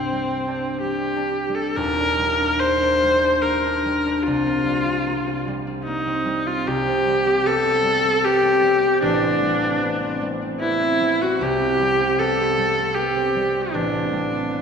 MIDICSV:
0, 0, Header, 1, 3, 480
1, 0, Start_track
1, 0, Tempo, 1061947
1, 368, Tempo, 949367
1, 847, Time_signature, 3, 2, 24, 8
1, 848, Tempo, 823045
1, 2768, Tempo, 809717
1, 3728, Tempo, 790514
1, 6608, Tempo, 773196
1, 8594, End_track
2, 0, Start_track
2, 0, Title_t, "Viola"
2, 0, Program_c, 0, 41
2, 0, Note_on_c, 0, 60, 72
2, 365, Note_off_c, 0, 60, 0
2, 368, Note_on_c, 0, 67, 73
2, 739, Note_on_c, 0, 69, 72
2, 746, Note_off_c, 0, 67, 0
2, 848, Note_on_c, 0, 70, 92
2, 856, Note_off_c, 0, 69, 0
2, 1333, Note_on_c, 0, 72, 92
2, 1342, Note_off_c, 0, 70, 0
2, 1813, Note_on_c, 0, 70, 79
2, 1822, Note_off_c, 0, 72, 0
2, 2279, Note_on_c, 0, 65, 77
2, 2288, Note_off_c, 0, 70, 0
2, 3005, Note_off_c, 0, 65, 0
2, 3235, Note_on_c, 0, 63, 78
2, 3604, Note_on_c, 0, 65, 79
2, 3613, Note_off_c, 0, 63, 0
2, 3729, Note_on_c, 0, 67, 95
2, 3738, Note_off_c, 0, 65, 0
2, 4204, Note_on_c, 0, 69, 99
2, 4213, Note_off_c, 0, 67, 0
2, 4678, Note_on_c, 0, 67, 93
2, 4687, Note_off_c, 0, 69, 0
2, 5153, Note_off_c, 0, 67, 0
2, 5157, Note_on_c, 0, 62, 92
2, 5864, Note_off_c, 0, 62, 0
2, 6112, Note_on_c, 0, 64, 90
2, 6484, Note_on_c, 0, 66, 81
2, 6493, Note_off_c, 0, 64, 0
2, 6609, Note_on_c, 0, 67, 98
2, 6618, Note_off_c, 0, 66, 0
2, 7088, Note_on_c, 0, 69, 95
2, 7097, Note_off_c, 0, 67, 0
2, 7559, Note_on_c, 0, 67, 84
2, 7569, Note_off_c, 0, 69, 0
2, 8045, Note_on_c, 0, 62, 78
2, 8054, Note_off_c, 0, 67, 0
2, 8594, Note_off_c, 0, 62, 0
2, 8594, End_track
3, 0, Start_track
3, 0, Title_t, "Harp"
3, 0, Program_c, 1, 46
3, 0, Note_on_c, 1, 36, 55
3, 0, Note_on_c, 1, 60, 42
3, 54, Note_on_c, 1, 55, 41
3, 214, Note_on_c, 1, 62, 48
3, 373, Note_off_c, 1, 55, 0
3, 379, Note_on_c, 1, 55, 41
3, 538, Note_off_c, 1, 62, 0
3, 544, Note_on_c, 1, 62, 47
3, 702, Note_off_c, 1, 55, 0
3, 708, Note_on_c, 1, 55, 45
3, 846, Note_on_c, 1, 27, 68
3, 854, Note_on_c, 1, 39, 71
3, 866, Note_off_c, 1, 36, 0
3, 872, Note_off_c, 1, 60, 0
3, 971, Note_off_c, 1, 62, 0
3, 978, Note_on_c, 1, 62, 50
3, 1088, Note_off_c, 1, 55, 0
3, 1095, Note_on_c, 1, 55, 46
3, 1213, Note_off_c, 1, 62, 0
3, 1220, Note_on_c, 1, 62, 55
3, 1342, Note_on_c, 1, 58, 50
3, 1457, Note_off_c, 1, 62, 0
3, 1464, Note_on_c, 1, 62, 52
3, 1582, Note_off_c, 1, 55, 0
3, 1589, Note_on_c, 1, 55, 56
3, 1702, Note_off_c, 1, 62, 0
3, 1709, Note_on_c, 1, 62, 51
3, 1821, Note_off_c, 1, 58, 0
3, 1828, Note_on_c, 1, 58, 50
3, 1943, Note_off_c, 1, 62, 0
3, 1950, Note_on_c, 1, 62, 55
3, 2060, Note_off_c, 1, 55, 0
3, 2067, Note_on_c, 1, 55, 55
3, 2181, Note_off_c, 1, 62, 0
3, 2188, Note_on_c, 1, 62, 54
3, 2302, Note_off_c, 1, 27, 0
3, 2305, Note_off_c, 1, 39, 0
3, 2309, Note_on_c, 1, 36, 68
3, 2423, Note_on_c, 1, 60, 53
3, 2534, Note_off_c, 1, 55, 0
3, 2541, Note_on_c, 1, 55, 48
3, 2653, Note_off_c, 1, 60, 0
3, 2660, Note_on_c, 1, 60, 52
3, 2768, Note_off_c, 1, 58, 0
3, 2776, Note_on_c, 1, 58, 52
3, 2886, Note_off_c, 1, 60, 0
3, 2893, Note_on_c, 1, 60, 52
3, 3011, Note_off_c, 1, 55, 0
3, 3018, Note_on_c, 1, 55, 55
3, 3124, Note_off_c, 1, 60, 0
3, 3132, Note_on_c, 1, 60, 53
3, 3242, Note_off_c, 1, 58, 0
3, 3250, Note_on_c, 1, 58, 49
3, 3363, Note_off_c, 1, 60, 0
3, 3370, Note_on_c, 1, 60, 55
3, 3473, Note_off_c, 1, 55, 0
3, 3480, Note_on_c, 1, 55, 55
3, 3600, Note_off_c, 1, 60, 0
3, 3607, Note_on_c, 1, 60, 51
3, 3718, Note_off_c, 1, 36, 0
3, 3726, Note_on_c, 1, 36, 69
3, 3751, Note_off_c, 1, 58, 0
3, 3759, Note_off_c, 1, 62, 0
3, 3847, Note_off_c, 1, 60, 0
3, 3854, Note_on_c, 1, 60, 56
3, 3962, Note_off_c, 1, 55, 0
3, 3970, Note_on_c, 1, 55, 50
3, 4080, Note_off_c, 1, 60, 0
3, 4087, Note_on_c, 1, 60, 58
3, 4204, Note_on_c, 1, 59, 55
3, 4315, Note_off_c, 1, 60, 0
3, 4322, Note_on_c, 1, 60, 55
3, 4426, Note_off_c, 1, 55, 0
3, 4434, Note_on_c, 1, 55, 57
3, 4553, Note_off_c, 1, 60, 0
3, 4560, Note_on_c, 1, 60, 53
3, 4675, Note_off_c, 1, 59, 0
3, 4682, Note_on_c, 1, 59, 58
3, 4785, Note_off_c, 1, 60, 0
3, 4792, Note_on_c, 1, 60, 56
3, 4908, Note_off_c, 1, 55, 0
3, 4915, Note_on_c, 1, 55, 55
3, 5025, Note_off_c, 1, 60, 0
3, 5032, Note_on_c, 1, 60, 57
3, 5153, Note_on_c, 1, 33, 72
3, 5177, Note_off_c, 1, 36, 0
3, 5268, Note_off_c, 1, 60, 0
3, 5275, Note_on_c, 1, 60, 55
3, 5384, Note_off_c, 1, 55, 0
3, 5391, Note_on_c, 1, 55, 53
3, 5509, Note_off_c, 1, 60, 0
3, 5516, Note_on_c, 1, 60, 62
3, 5632, Note_off_c, 1, 59, 0
3, 5639, Note_on_c, 1, 59, 59
3, 5758, Note_off_c, 1, 60, 0
3, 5765, Note_on_c, 1, 60, 57
3, 5872, Note_off_c, 1, 55, 0
3, 5879, Note_on_c, 1, 55, 59
3, 5993, Note_off_c, 1, 60, 0
3, 6000, Note_on_c, 1, 60, 57
3, 6117, Note_off_c, 1, 59, 0
3, 6124, Note_on_c, 1, 59, 55
3, 6229, Note_off_c, 1, 60, 0
3, 6236, Note_on_c, 1, 60, 62
3, 6351, Note_off_c, 1, 55, 0
3, 6359, Note_on_c, 1, 55, 57
3, 6481, Note_off_c, 1, 60, 0
3, 6488, Note_on_c, 1, 60, 58
3, 6603, Note_on_c, 1, 36, 80
3, 6622, Note_off_c, 1, 33, 0
3, 6719, Note_off_c, 1, 60, 0
3, 6727, Note_on_c, 1, 60, 58
3, 6851, Note_off_c, 1, 55, 0
3, 6859, Note_on_c, 1, 55, 57
3, 6965, Note_off_c, 1, 60, 0
3, 6973, Note_on_c, 1, 60, 59
3, 7080, Note_off_c, 1, 59, 0
3, 7088, Note_on_c, 1, 59, 54
3, 7209, Note_off_c, 1, 60, 0
3, 7217, Note_on_c, 1, 60, 57
3, 7326, Note_off_c, 1, 55, 0
3, 7333, Note_on_c, 1, 55, 60
3, 7452, Note_off_c, 1, 60, 0
3, 7460, Note_on_c, 1, 60, 59
3, 7564, Note_off_c, 1, 59, 0
3, 7571, Note_on_c, 1, 59, 54
3, 7681, Note_off_c, 1, 60, 0
3, 7688, Note_on_c, 1, 60, 58
3, 7807, Note_off_c, 1, 55, 0
3, 7814, Note_on_c, 1, 55, 57
3, 7924, Note_off_c, 1, 60, 0
3, 7931, Note_on_c, 1, 60, 54
3, 8050, Note_on_c, 1, 33, 67
3, 8057, Note_off_c, 1, 36, 0
3, 8163, Note_off_c, 1, 60, 0
3, 8171, Note_on_c, 1, 60, 54
3, 8281, Note_off_c, 1, 55, 0
3, 8289, Note_on_c, 1, 55, 52
3, 8400, Note_off_c, 1, 60, 0
3, 8408, Note_on_c, 1, 60, 60
3, 8519, Note_off_c, 1, 59, 0
3, 8526, Note_on_c, 1, 59, 50
3, 8594, Note_off_c, 1, 33, 0
3, 8594, Note_off_c, 1, 55, 0
3, 8594, Note_off_c, 1, 59, 0
3, 8594, Note_off_c, 1, 60, 0
3, 8594, End_track
0, 0, End_of_file